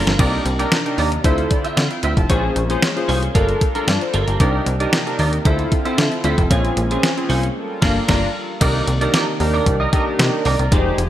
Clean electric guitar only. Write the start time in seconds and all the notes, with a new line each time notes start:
0.06 A#3 F4 A#4
0.19 D#4 A#4 D5
0.45 muted clean electric guitar stroke
0.59 D#4 A#4 D5
0.85 muted clean electric guitar stroke
0.98 D#4 A#4 D5
1.12 muted clean electric guitar stroke
1.24 F4 C5 E5
1.38 muted clean electric guitar stroke
1.51 muted clean electric guitar stroke
1.64 F4 C5 E5
1.91 muted clean electric guitar stroke
2.03 F4 C5 E5
2.17 muted clean electric guitar stroke
2.29 C#4 G#4 C#5
2.56 muted clean electric guitar stroke
2.70 C#4 G#4 C5
2.96 muted clean electric guitar stroke
3.08 C#4 G#4 C5
3.22 muted clean electric guitar stroke
3.35 A#3 F4 A4
3.49 muted clean electric guitar stroke
3.61 muted clean electric guitar stroke
3.75 A#3 F4 A#4
3.88 muted clean electric guitar stroke
4.01 muted clean electric guitar stroke
4.14 A#3 F4 A4
4.28 A#3 F4 A#4
4.40 D#4 A#4 D5
4.66 muted clean electric guitar stroke
4.80 D#4 A#4 D5
5.07 muted clean electric guitar stroke
5.19 D#4 A#4 D5
5.33 muted clean electric guitar stroke
5.45 F4 C5 E5
5.59 muted clean electric guitar stroke
5.71 muted clean electric guitar stroke
5.85 F4 C5 E5
6.12 muted clean electric guitar stroke
6.24 F4 C5 E5
6.38 muted clean electric guitar stroke
6.50 C#4 G#4 C#5
6.77 muted clean electric guitar stroke
6.91 C#4 G#4 C5
7.17 muted clean electric guitar stroke
7.29 C#4 G#4 C5
7.43 muted clean electric guitar stroke
7.82 A#3 F4 A#4
8.08 A#3 F4 A#4
8.61 D#4 A#4 D5
8.87 muted clean electric guitar stroke
9.01 D#4 A#4 D5
9.13 D#4 A#4 D5
9.28 muted clean electric guitar stroke
9.40 muted clean electric guitar stroke
9.54 D#4 A#4 D5
9.66 muted clean electric guitar stroke
9.80 D#4 A#4 D#5
9.92 D#4 A#4 D#5
10.06 muted clean electric guitar stroke
10.19 muted clean electric guitar stroke
10.33 muted clean electric guitar stroke
10.45 D#4 A#4 D5
10.59 D#4 A#4 D5
10.72 G#3 D#4 G4
10.98 muted clean electric guitar stroke